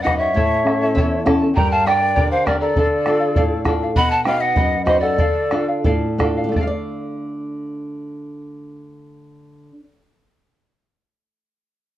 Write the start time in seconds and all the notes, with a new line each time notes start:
Already playing: F#2
0.02 D#4 F#4 B4 D#5 F#5
0.06 B4 D#5 F#5, bombo rim, bombo low
0.17 C#5 E5 F#5
0.23 D#5
0.34 A2 E4 A4 C#5 E5 A5, bombo low
0.65 C#4 E4 A4 E5, bombo rim
0.69 A5
0.82 E4 A4 A5
0.95 E2 E4 A4 C#5 E5 A5, bombo low
1.26 C#4 E4 A4 C#5 E5 A5, bombo rim, bombo low
1.42 E4 A4 A5
1.55 G2 G4 A#4 D5 G5 A#5, bombo low
1.70 F5 A5
1.86 D4 G4 A#4 D5 G5 A#5, bombo rim
2.00 A#4 D5 A#5
2.16 D3 G4 A#4 D5 G5 A#5, bombo low
2.31 C5 F5
2.45 D4 G4 A#4 D5 G5 A#5, bombo rim, bombo low
2.60 A4 A#4 D5 A#5
2.76 D3 A4 D5 F5, bombo low
3.06 D4 F4 A4 D5 F5, bombo rim
3.20 D5 F5
3.36 A2 A4 D5 F5, bombo low
3.65 D4 F4 A4 D5, bombo rim, bombo low
3.69 F5
3.83 D5 F5
3.96 B2 B4 D#5 F#5 B5, bombo low
4.10 F#5 A5
4.24 D#4 F#4 B4 F5 G5, bombo rim
4.28 B4 D#5 F#5
4.39 D#5 F#5
4.56 F#2 B4 D#5 F#5, bombo low
4.85 D#4 F#4 B4 C5 D#5, bombo rim, bombo low
4.89 F#5
5.00 A4 D5 F#5
5.04 D#5
5.18 D3 A4 D5 F5, bombo low
5.51 D4 F4 A4 D5 F5, bombo rim
5.68 D5 F5
5.84 A2 A4 D5 F5, bombo low
6.18 D4 F4 A4 D5 F5, bombo rim, bombo low
6.37 D5 F5
6.44 D3
6.49 A3 A4
6.53 D4 D5, bombo low
6.58 A4 F5
6.63 F5
6.67 D5